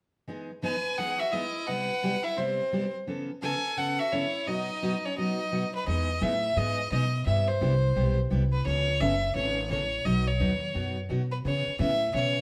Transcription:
0.28 E3 G#3 B3 D#4 G#4
0.62 E3 G#3 B3 D#4 G#4 B4 G#5
0.98 E3 G#3 B3 D#4 G#4 F#5
1.19 F#4 E5
1.32 E3 G#3 B3 D#4 E4 G#4 D#5
1.67 C3 G3 B3 E4 G4 B4 F#5
2.03 C3 G3 B3 E4 G4
2.23 E4 E5
2.37 C3 G3 B3 C4 E4 G4 C5
2.72 C3 G3 B3 E4 G4
3.07 C#3 E3 B3 C#4 A4
3.42 C#3 E3 B3 C#4 A4 G#5
3.77 C#3 E3 B3 C#4 A4 F#5
3.99 F#4 E5
4.12 C#3 E3 B3 C#4 E4 A4 C#5
4.47 B2 F#3 B3 D#4 F#4 D#5
4.82 B2 F#3 B3 D#4 F#4
5.05 C#4 C#5
5.17 B2 F#3 B3 D#4 F#4 D#5
5.52 B2 F#3 B3 D#4 F#4
5.75 B4
5.86 E2 E3 G#3 B3 D#4 G#4 D#5
6.21 A2 E3 G#3 B3 D#4 G#4 E5
6.56 G#2 E3 G#3 B3 D#4 G#4 D#5
6.91 B2 E3 G#3 B3 D#4 G#4 D#5
7.26 G2 C3 G3 B3 E4 G4 E5
7.48 C5
7.61 C2 C3 G3 B3 E4 G4
7.96 B1 C3 G3 B3 E4 G4
8.30 C2 C3 G3 B3 E4 G4
8.52 B4
8.65 C#2 C#3 E3 B3 C#4 A4 C#5
9.00 F#1 C#3 E3 B3 C#4 A4 E5
9.34 G#1 C#3 E3 B3 C#4 A4 C#5
9.70 A1 C#3 E3 B3 C#4 A4 C#5
10.05 B1 B2 F#3 B3 D#4 F#4 D#5
10.27 C#5
10.39 D#2 B2 F#3 B3 D#4 F#4
10.74 F#2 B2 F#3 B3 D#4 F#4
11.09 B2 F#3 B3 D#4 F#4
11.32 B4
11.45 C#3 E3 B3 C#4 G#4 C#5
11.67 muted upright bass stroke
11.79 A2 C#3 E3 B3 C#4 G#4 E5
12.13 B2 C#3 E3 B3 C#4 G#4 C#5

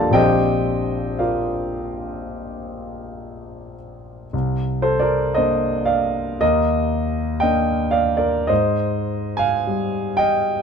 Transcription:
Already playing: D2 F3 A#3 D4 G4 A4 A#4 C5 D5 D#5 F5 G5 A5 A#5 C6 D6
0.11 A#1 F3 C4 D4 F4 G4 C5 D#5 G5
1.19 F4 A#4 D5 F5
4.33 C2
4.82 A4 C5
5.00 A#4 D5
5.34 A#3 D4 C5 D#5
5.85 D5 F5
6.41 D#2 A#4 D#5
7.40 A#3 D4 D#5 G5
7.91 D5 F5
8.17 A#4 D5
8.47 G#2 C5 D#5
9.37 F5 G#5
9.67 G3
10.17 D#5 G5

